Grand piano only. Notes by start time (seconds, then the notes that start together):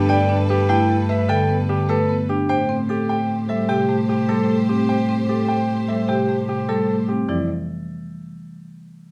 Already playing: G4
0.10 G5
0.50 G4
0.70 G5
1.09 E5
1.29 G5
1.69 G4
1.89 A4
2.29 G4
2.49 G5
2.90 G4
3.09 G5
3.49 E5
3.69 G5
4.09 G4
4.29 A4
4.69 G4
4.89 G5
5.29 G4
5.48 G5
5.88 E5
6.09 G5
6.49 G4
6.69 A4
7.08 G4
7.29 D5